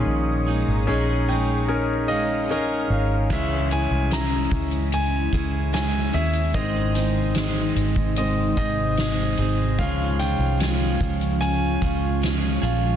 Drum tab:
CC |----------------|x---------------|----------------|----------------|
HH |----------------|--x-x-xxx-x-x-xx|x-x-x-xxx-x-x-x-|x-x-x-xxx-x-x-x-|
SD |----------------|----o-------o---|--o-o-------o---|--o-o-------o---|
BD |----------------|o-----o---o-----|o------o--o-----|o-----o---o-----|